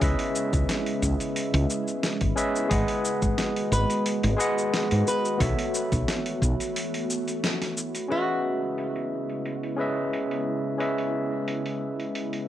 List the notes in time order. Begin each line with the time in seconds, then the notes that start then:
Already playing: C#3 G#3 B3 E4 B4 D#5 E5
0.00 C#2 C#4 G#4 B4 D#5 E5, kick, open hi-hat, cabasa
0.19 open hi-hat
0.35 cabasa
0.53 C#2, kick, cabasa
0.69 snare, open hi-hat, cabasa
0.86 open hi-hat
1.02 C#2, kick, cabasa
1.20 open hi-hat, cabasa
1.36 open hi-hat, cabasa
1.54 C#2, open hi-hat
1.70 cabasa
1.88 cabasa
2.03 snare, open hi-hat, cabasa
2.21 G#1, kick, open hi-hat
2.36 C#4 G#4 B4 D#5 E5, cabasa
2.56 cabasa
2.68 G#1 D#3 G#3 B3 F#4 G#4 B4 D#5, kick, open hi-hat, cabasa
2.73 F#5
2.88 open hi-hat
3.05 cabasa
3.22 G#1, kick, cabasa
3.38 snare, open hi-hat, cabasa
3.56 open hi-hat
3.72 G#1 B4, cabasa
3.90 open hi-hat, cabasa
4.06 open hi-hat, cabasa
4.23 G#1, open hi-hat
4.37 G#3 G#4 B4 D#5, cabasa
4.41 F#5
4.58 cabasa
4.74 snare, open hi-hat, cabasa
4.91 G#2, open hi-hat
5.07 B4, cabasa
5.25 cabasa
5.38 B1 E3 A3 B3 F#4 A4 C#5 E5, kick, open hi-hat, cabasa
5.59 open hi-hat
5.74 cabasa
5.92 B1, kick, open hi-hat, cabasa
6.08 snare, open hi-hat, cabasa
6.26 open hi-hat
6.42 B1, kick, cabasa
6.60 open hi-hat, cabasa
6.76 open hi-hat, cabasa
6.94 open hi-hat
7.10 cabasa
7.28 open hi-hat, cabasa
7.44 snare, open hi-hat, cabasa
7.62 snare, open hi-hat
7.77 cabasa
7.95 open hi-hat, cabasa
8.08 C#3 G#3 B3 C#4 E4 F#4 G#4 B4 D#5, open hi-hat
8.12 E5
8.28 open hi-hat
8.78 open hi-hat
8.96 open hi-hat
9.29 open hi-hat
9.45 open hi-hat
9.63 open hi-hat
9.77 C#4 G#4 B4 D#5
9.81 E5
10.13 open hi-hat
10.31 open hi-hat
10.78 C#4 G#4 B4 D#5, open hi-hat
10.82 E5
10.98 open hi-hat
11.48 open hi-hat
11.66 open hi-hat
12.00 open hi-hat
12.15 open hi-hat
12.33 open hi-hat